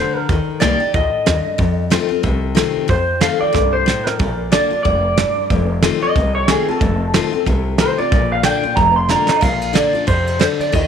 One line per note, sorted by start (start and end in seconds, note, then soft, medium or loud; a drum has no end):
0.00 0.28 D3 medium
0.00 0.16 C5 medium
0.15 0.60 A#4 medium
0.15 muted upright bass stroke medium
0.29 0.43 D#2 loud
0.29 0.59 D#3 medium
0.29 kick loud
0.29 open hi-hat medium
0.48 muted upright bass stroke medium
0.60 0.78 C2 medium
0.60 0.79 D#3 medium
0.60 0.79 A#3 loud
0.60 0.80 D#4 loud
0.60 0.79 G4 loud
0.60 0.92 D5 medium
0.60 snare loud
0.80 0.94 D#4 medium
0.80 0.93 G4 medium
0.80 muted upright bass stroke medium
0.94 1.11 D2 medium
0.94 1.25 A2 medium
0.94 1.89 D#5 medium
0.94 kick loud
0.94 open hi-hat soft
1.14 muted upright bass stroke medium
1.26 1.43 D#2 medium
1.26 1.58 G2 medium
1.26 snare loud
1.46 muted upright bass stroke medium
1.58 2.21 F2 medium
1.58 1.95 F2 medium
1.58 kick loud
1.58 open hi-hat medium
1.90 2.09 D#3 medium
1.90 2.10 A3 loud
1.90 2.10 C4 loud
1.90 2.07 F4 loud
1.90 snare loud
2.09 2.24 C4 soft
2.09 2.23 F4 medium
2.09 muted upright bass stroke medium
2.23 2.60 C2 medium
2.23 2.86 C3 medium
2.23 kick loud
2.23 open hi-hat medium
2.55 2.87 D#3 medium
2.55 2.87 A3 medium
2.55 2.88 C4 medium
2.55 2.88 F4 medium
2.55 snare loud
2.55 open hi-hat medium
2.76 muted upright bass stroke medium
2.88 3.51 F2 medium
2.88 3.26 F2 loud
2.88 3.21 C5 loud
2.88 kick loud
2.88 open hi-hat medium
3.21 3.53 D#3 medium
3.21 3.53 A3 medium
3.21 3.53 C4 medium
3.21 3.54 F4 medium
3.21 3.40 F5 medium
3.21 snare loud
3.41 3.72 D5 medium
3.41 muted upright bass stroke medium
3.53 3.91 C2 medium
3.53 3.85 G2 medium
3.53 kick loud
3.53 snare medium
3.73 4.06 C5 medium
3.86 4.18 A2 medium
3.86 snare medium
4.06 4.51 A#4 medium
4.06 muted upright bass stroke medium
4.06 snare medium
4.19 4.56 A#1 loud
4.19 4.82 A#2 medium
4.19 kick loud
4.19 open hi-hat medium
4.52 4.70 D3 loud
4.52 4.71 A#3 medium
4.52 4.71 D4 medium
4.52 4.69 F4 medium
4.52 4.82 D5 medium
4.52 snare loud
4.70 4.85 D4 soft
4.70 4.84 F4 medium
4.70 muted upright bass stroke medium
4.83 5.22 F1 medium
4.83 5.16 A2 medium
4.83 5.79 D5 loud
4.83 kick loud
4.83 open hi-hat soft
5.17 5.49 G2 medium
5.17 snare loud
5.38 muted upright bass stroke medium
5.50 5.87 F1 loud
5.50 6.13 F2 medium
5.50 kick loud
5.50 open hi-hat medium
5.82 6.01 D#3 medium
5.82 6.02 A3 loud
5.82 6.02 C4 loud
5.82 6.00 F4 medium
5.82 snare loud
6.02 6.16 C4 medium
6.02 6.15 F4 medium
6.02 6.34 D#5 loud
6.02 muted upright bass stroke medium
6.15 6.52 C2 medium
6.15 6.78 C3 medium
6.15 kick loud
6.15 open hi-hat medium
6.35 6.48 C#5 medium
6.48 6.67 D#3 medium
6.48 6.67 A3 medium
6.48 6.67 C4 medium
6.48 6.67 F4 medium
6.48 6.68 G#4 medium
6.48 snare loud
6.68 6.82 C4 medium
6.68 6.81 F4 medium
6.68 7.63 A4 loud
6.68 muted upright bass stroke medium
6.80 7.17 F1 loud
6.80 7.44 F2 medium
6.80 kick loud
6.80 open hi-hat medium
7.14 7.32 D#3 medium
7.14 7.32 A3 loud
7.14 7.33 C4 medium
7.14 7.31 F4 loud
7.14 snare loud
7.33 7.47 C4 medium
7.33 7.46 F4 medium
7.33 muted upright bass stroke medium
7.46 7.82 C2 medium
7.46 8.09 C3 medium
7.46 kick loud
7.46 open hi-hat soft
7.78 7.97 D#3 medium
7.78 7.97 A3 medium
7.78 7.98 C4 medium
7.78 7.97 F4 medium
7.78 7.98 C5 loud
7.78 snare loud
7.98 8.12 C4 soft
7.98 8.11 F4 medium
7.98 8.30 D5 medium
7.98 muted upright bass stroke medium
8.12 8.48 A#1 loud
8.12 8.74 A#2 medium
8.12 kick loud
8.12 open hi-hat medium
8.32 8.44 F5 medium
8.43 8.62 D3 medium
8.43 8.63 A#3 loud
8.43 8.63 D4 loud
8.43 8.62 F4 loud
8.43 8.76 G5 loud
8.43 snare loud
8.43 open hi-hat medium
8.63 8.77 D4 medium
8.63 8.76 F4 medium
8.63 muted upright bass stroke medium
8.76 9.13 F1 medium
8.76 9.39 F2 medium
8.76 8.95 A#5 loud
8.76 kick loud
8.76 open hi-hat medium
8.96 9.09 C6 medium
9.09 9.27 D3 medium
9.09 9.28 A#3 medium
9.09 9.28 D4 medium
9.09 9.27 F4 medium
9.09 9.42 A#5 loud
9.09 snare medium
9.28 9.42 D4 soft
9.28 9.41 F4 medium
9.28 9.32 D#5 medium
9.28 muted upright bass stroke medium
9.28 snare medium
9.33 9.36 D5 medium
9.33 9.42 D#5 medium
9.41 9.79 A#1 loud
9.41 10.04 A#2 medium
9.41 9.76 F5 loud
9.41 kick loud
9.41 ride medium
9.61 ride medium
9.73 9.92 D3 medium
9.73 9.93 A#3 medium
9.73 9.93 D4 medium
9.73 9.92 F4 medium
9.73 10.07 D5 medium
9.73 snare loud
9.73 ride medium
9.93 10.07 D4 medium
9.93 10.06 F4 medium
9.93 muted upright bass stroke medium
9.93 ride medium
10.07 10.44 F2 medium
10.07 10.38 C3 medium
10.07 10.39 C5 loud
10.07 kick loud
10.07 ride medium
10.27 ride medium
10.39 10.71 D3 medium
10.39 10.45 C5 medium
10.39 snare loud
10.39 ride medium
10.59 10.74 D5 medium
10.59 muted upright bass stroke medium
10.59 ride medium
10.72 10.87 D#2 loud
10.72 10.87 D#3 medium
10.72 10.87 D#5 loud
10.72 kick loud
10.72 ride medium